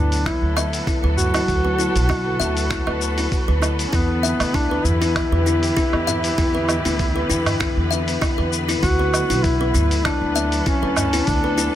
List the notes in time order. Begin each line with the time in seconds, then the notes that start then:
Already playing: D2 D3 F#3 B3 D4 E4 A4 B4
0.12 open hi-hat, shaker
0.26 E4, finger snap, kick, open hi-hat, shaker
0.42 D2
0.57 E5, low woodblock, shaker
0.73 open hi-hat, shaker
0.87 E4, kick, open hi-hat, shaker
1.03 D2 B4
1.17 F#4, udu, shaker
1.34 E4, open hi-hat, low woodblock, shaker
1.48 D2, kick, open hi-hat, shaker
1.65 B4
1.79 E4, shaker
1.96 B1, open hi-hat, shaker
2.09 E4, kick, open hi-hat, low woodblock, shaker
2.40 D2 E5, shaker
2.57 open hi-hat, shaker
2.70 E4, finger snap, kick, open hi-hat, shaker
2.87 D2 B4, low woodblock
3.02 shaker
3.18 E4, open hi-hat, shaker
3.32 kick, open hi-hat, shaker
3.48 D2 B4
3.62 E4, low woodblock, shaker
3.79 open hi-hat, shaker
3.87 C#4
3.93 E2 E3 B3 E4, kick, open hi-hat, shaker
4.23 E5, shaker
4.40 D2 G4, open hi-hat, low woodblock, shaker
4.54 D4 E4, kick, open hi-hat, shaker
4.71 B4
4.85 E2 E4, udu, shaker
5.02 E4, open hi-hat, shaker
5.16 finger snap, kick, open hi-hat, low woodblock, shaker
5.32 E2 B4
5.46 E4, shaker
5.63 open hi-hat, shaker
5.77 E4, kick, open hi-hat, shaker
5.93 E2, low woodblock
6.07 E5, udu, shaker
6.24 open hi-hat, shaker
6.38 E2 E4, kick, open hi-hat, shaker
6.55 B4
6.69 low woodblock, shaker
6.85 D2 E4, open hi-hat, shaker
6.99 kick, open hi-hat, shaker
7.16 B4
7.30 E2 E4, shaker
7.46 open hi-hat, udu, low woodblock, shaker
7.60 E4, finger snap, kick, open hi-hat, shaker
7.77 E2
7.91 E5, shaker
8.08 open hi-hat, shaker
8.21 E4, kick, open hi-hat, low woodblock, shaker
8.38 E2 B4
8.53 shaker
8.68 E4, open hi-hat, shaker
8.83 D2 F#3 E4 F#4, kick, open hi-hat, shaker
8.99 B4
9.14 low woodblock, shaker
9.30 B1 E4, open hi-hat, shaker
9.44 E4, kick, open hi-hat, shaker
9.61 B4
9.74 D2 E4, udu, shaker
9.91 open hi-hat, shaker
10.05 D4 E4, finger snap, kick, open hi-hat, low woodblock, shaker
10.22 D2
10.36 E5, shaker
10.42 A4
10.52 open hi-hat, shaker
10.66 C#4 E4, kick, open hi-hat, shaker
10.83 D2 B4
10.97 udu, low woodblock, shaker
11.13 E4, open hi-hat, shaker
11.27 D2 D4, kick, open hi-hat, shaker
11.44 B4
11.58 E4, shaker